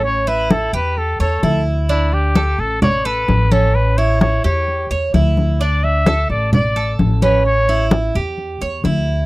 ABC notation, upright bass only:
X:1
M:4/4
L:1/8
Q:1/4=129
K:Amix
V:1 name="Upright bass" clef=bass
A,,,3 E,,2 E,, D,,2- | D,,3 A,,,3 A,,,2- | A,,,3 E,,2 E,, D,,2- | D,,3 A,,,3 A,,,2- |
A,,,3 E,,2 E,, D,,2 |]